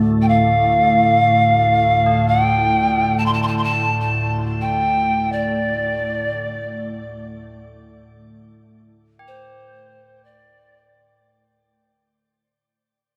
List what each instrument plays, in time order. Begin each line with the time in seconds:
Already playing: ambient pad D2 A2
0.22 pan flute G5
0.29 pan flute F5
2.06 tubular bells D4
2.28 pan flute G5
3.18 pan flute A5
3.26 pan flute C6
3.33 pan flute A5
3.42 pan flute C6
3.48 pan flute A5
3.58 pan flute C6
3.64 pan flute A5
4.01 pan flute A5
4.61 pan flute G5
5.32 pan flute D5
9.19 tubular bells G4
9.28 pan flute C5
10.24 pan flute D5